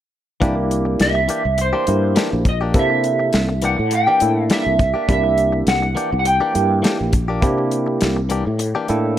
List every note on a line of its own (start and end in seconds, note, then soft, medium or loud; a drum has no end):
0.41 0.96 C2 medium
0.41 0.57 E3 medium
0.41 1.18 A#3 medium
0.41 0.56 A#3 medium
0.41 0.56 D4 medium
0.41 1.18 D4 medium
0.41 1.19 E4 medium
0.41 0.55 G4 medium
0.41 1.19 G4 medium
0.41 kick medium
0.41 closed hi-hat medium
0.57 muted clean electric guitar stroke soft
0.71 closed hi-hat medium
0.85 muted clean electric guitar stroke soft
1.00 1.27 C2 medium
1.00 1.61 E5 medium
1.00 snare medium
1.00 closed hi-hat medium
1.15 muted clean electric guitar stroke soft
1.28 1.44 E3 medium
1.28 1.44 A#3 medium
1.28 1.44 D4 medium
1.28 1.43 G4 medium
1.28 closed hi-hat medium
1.44 1.72 C2 medium
1.44 muted clean electric guitar stroke soft
1.58 2.48 C5 medium
1.58 muted clean electric guitar stroke soft
1.58 closed hi-hat medium
1.73 1.85 E3 soft
1.73 1.86 A#3 medium
1.73 1.86 D4 medium
1.73 1.86 G4 medium
1.86 2.14 G2 medium
1.86 2.45 A#3 medium
1.86 2.45 D4 medium
1.86 2.45 E4 medium
1.86 2.45 G4 medium
1.86 muted clean electric guitar stroke soft
1.86 closed hi-hat medium
2.16 2.32 E3 medium
2.16 2.31 A#3 soft
2.16 2.31 D4 medium
2.16 2.30 G4 medium
2.16 snare loud
2.16 closed hi-hat medium
2.31 2.72 A#1 medium
2.31 muted clean electric guitar stroke soft
2.45 2.56 D#5 medium
2.45 muted clean electric guitar stroke soft
2.45 kick medium
2.45 closed hi-hat medium
2.61 2.79 A#3 soft
2.61 2.79 D4 soft
2.61 2.78 G4 soft
2.74 3.29 C3 medium
2.74 3.51 A#3 medium
2.74 3.52 D4 medium
2.74 3.52 E4 medium
2.74 3.52 A4 medium
2.74 kick loud
2.74 closed hi-hat medium
2.79 3.65 E5 medium
2.90 muted clean electric guitar stroke soft
3.04 closed hi-hat medium
3.20 muted clean electric guitar stroke soft
3.33 3.75 C2 medium
3.33 snare loud
3.33 closed hi-hat medium
3.49 muted clean electric guitar stroke soft
3.62 3.78 E3 medium
3.62 3.78 A#3 medium
3.62 3.78 D4 medium
3.62 3.77 G4 medium
3.62 3.94 F#5 medium
3.62 closed hi-hat medium
3.78 4.05 A2 medium
3.78 muted clean electric guitar stroke soft
3.91 muted clean electric guitar stroke soft
3.91 closed hi-hat medium
3.95 4.41 G5 medium
4.07 4.20 E3 soft
4.07 4.20 A#3 medium
4.07 4.20 D4 medium
4.07 4.21 G4 medium
4.20 4.48 A2 medium
4.20 4.78 A#3 medium
4.20 4.78 D4 medium
4.20 4.79 E4 medium
4.20 4.79 A4 medium
4.20 muted clean electric guitar stroke soft
4.20 closed hi-hat medium
4.41 4.53 F5 medium
4.50 4.66 E3 soft
4.50 4.65 A#3 medium
4.50 4.64 D4 medium
4.50 4.64 G4 medium
4.50 5.11 E5 medium
4.50 snare loud
4.50 closed hi-hat medium
4.65 4.93 C2 medium
4.65 muted clean electric guitar stroke soft
4.79 muted clean electric guitar stroke soft
4.79 kick medium
4.79 closed hi-hat medium
4.94 5.12 A#3 soft
4.94 5.12 D4 soft
4.94 5.11 G4 soft
5.08 5.63 C2 medium
5.08 5.85 A#3 medium
5.08 5.85 D4 medium
5.08 5.86 E4 medium
5.08 5.86 G4 medium
5.08 kick medium
5.08 closed hi-hat medium
5.12 5.68 E5 medium
5.24 muted clean electric guitar stroke soft
5.38 closed hi-hat medium
5.52 muted clean electric guitar stroke soft
5.67 5.94 C2 medium
5.67 6.18 F#5 loud
5.67 snare medium
5.67 closed hi-hat medium
5.83 muted clean electric guitar stroke soft
5.95 6.11 E3 medium
5.95 6.11 A#3 medium
5.95 6.11 D4 medium
5.95 6.10 G4 medium
5.95 closed hi-hat medium
6.12 6.39 C2 medium
6.12 muted clean electric guitar stroke soft
6.19 6.26 F#5 medium
6.25 7.10 G5 medium
6.25 muted clean electric guitar stroke soft
6.25 closed hi-hat medium
6.41 6.53 E3 medium
6.41 6.53 A#3 medium
6.41 6.54 D4 medium
6.41 6.54 G4 medium
6.53 6.82 G2 medium
6.53 7.11 A#3 medium
6.53 7.12 D4 medium
6.53 7.12 E4 medium
6.53 7.12 G4 medium
6.53 muted clean electric guitar stroke soft
6.53 closed hi-hat medium
6.82 6.99 E3 medium
6.82 6.99 A#3 medium
6.82 6.98 D4 medium
6.82 6.98 G4 medium
6.82 snare loud
6.82 closed hi-hat medium
6.99 7.39 A#1 medium
6.99 muted clean electric guitar stroke soft
7.13 muted clean electric guitar stroke soft
7.13 kick medium
7.13 closed hi-hat medium
7.28 7.46 A#3 soft
7.28 7.46 D4 soft
7.28 7.45 G4 medium
7.41 7.97 C3 medium
7.41 8.19 A#3 medium
7.41 8.19 D4 medium
7.41 8.19 E4 medium
7.41 8.19 G4 medium
7.41 kick loud
7.41 closed hi-hat medium
7.58 muted clean electric guitar stroke soft
7.71 closed hi-hat medium
7.87 muted clean electric guitar stroke soft
8.01 8.42 C2 medium
8.01 snare medium
8.01 closed hi-hat medium
8.17 muted clean electric guitar stroke soft
8.29 8.45 E3 medium
8.29 8.45 A#3 medium
8.29 8.45 D4 medium
8.29 8.44 G4 medium
8.29 closed hi-hat medium
8.45 8.73 A2 medium
8.45 muted clean electric guitar stroke soft
8.59 muted clean electric guitar stroke soft
8.59 closed hi-hat medium
8.75 8.88 E3 medium
8.75 8.88 A#3 medium
8.75 8.88 D4 medium
8.75 8.89 G4 medium
8.88 9.16 A2 medium
8.88 9.19 A#3 medium
8.88 9.19 D4 medium
8.88 9.19 E4 medium
8.88 9.19 A4 medium
8.88 9.16 G5 medium
8.88 closed hi-hat medium